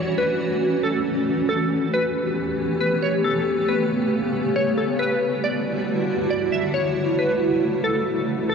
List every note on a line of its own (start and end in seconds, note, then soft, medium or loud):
0.00 1.46 E3 medium
0.00 1.47 A3 medium
0.00 1.47 C#4 medium
0.00 1.46 F#4 medium
0.00 0.15 C#5 loud
0.18 0.80 B4 medium
0.83 1.04 A4 medium
1.49 3.23 E3 medium
1.49 4.96 A3 medium
1.49 4.96 B3 medium
1.49 4.96 G4 medium
1.49 1.90 A4 loud
1.94 2.77 B4 medium
2.81 3.01 B4 medium
3.02 3.23 C#5 medium
3.24 4.98 C#3 medium
3.24 3.65 A4 loud
3.69 4.52 B4 medium
4.56 4.77 C#5 medium
4.78 4.98 A4 medium
4.99 6.73 D3 medium
4.99 6.73 G3 medium
4.99 8.46 E4 medium
4.99 8.46 F#4 medium
4.99 5.40 B4 loud
5.44 6.27 D5 medium
6.30 6.51 D5 medium
6.52 6.73 E5 medium
6.74 8.48 C#3 medium
6.74 8.55 A3 medium
6.74 7.15 C#5 loud
7.19 7.80 B4 medium
7.84 8.05 A4 medium
8.49 8.55 B2 medium
8.49 8.55 E4 medium
8.49 8.55 G4 medium
8.49 8.55 A4 loud